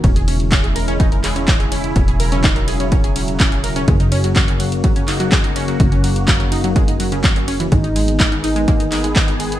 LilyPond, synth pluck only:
\new Staff \with { instrumentName = "Synth pluck" } { \time 4/4 \key cis \dorian \tempo 4 = 125 <cis' cis''>16 <gis' gis''>16 <cis' cis''>16 r16 <cis' cis''>16 <gis' gis''>16 <ais' ais''>16 <cis' cis''>16 <dis' dis''>16 <ais' ais''>16 <gis' gis''>16 <cis' cis''>16 <cis' cis''>16 <gis' gis''>16 <cis' cis''>16 r16 | <cis' cis''>16 <gis' gis''>16 <ais' ais''>16 <cis' cis''>16 <dis' dis''>16 <ais' ais''>16 <gis' gis''>16 <cis' cis''>16 <cis' cis''>16 <gis' gis''>16 <cis' cis''>16 r16 <cis' cis''>16 <gis' gis''>16 <ais' ais''>16 <cis' cis''>16 | <gis gis'>16 <dis' dis''>16 <cis' cis''>16 <fis fis'>16 <fis fis'>16 <cis' cis''>16 <fis fis'>16 r16 <fis fis'>16 <cis' cis''>16 <dis' dis''>16 <fis fis'>16 <gis gis'>16 <dis' dis''>16 <cis' cis''>16 <fis fis'>16 | <fis fis'>16 <cis' cis''>16 <fis fis'>16 r16 <fis fis'>16 <cis' cis''>16 <dis' dis''>16 <fis fis'>16 <gis gis'>16 <dis' dis''>16 <fis fis'>16 <cis cis'>16 <fis fis'>16 <cis' cis''>16 <cis' cis''>16 <e e'>16 |
<gis gis'>16 <dis' dis''>16 <gis gis'>16 r16 <gis gis'>16 <dis' dis''>16 <dis' dis''>16 <gis gis'>16 <ais ais'>16 <dis' dis''>16 <dis' dis''>16 <gis gis'>16 <gis gis'>16 <dis' dis''>16 <gis gis'>16 r16 | }